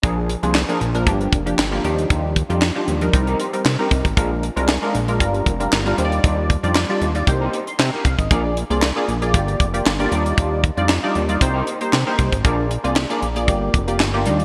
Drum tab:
HH |x-xx-xxxxxxx--xx|x-xx--xxxxxx--xx|x-xx--xxxxxx-xxx|x-xx--xxx-xx--xx|
CP |----x-------x---|----x-------x---|----x-------x---|----x-------x---|
SD |----o-------o---|----o-------o---|----o-------o---|----o-------o---|
BD |o-------o-o-----|o-o-----o-----oo|o-------o-o-----|o-o-----o-----oo|

HH |x-xx--xxxxxx-xxx|x-xx--xxx-xx--xx|x-xx-xxxx-xx--xx|
CP |----x-------x---|----x-------x---|----x-------x---|
SD |----o-------o---|----o-------o---|----o-------o---|
BD |o-------o-o-----|o-o-----o-----oo|o-------o-o-----|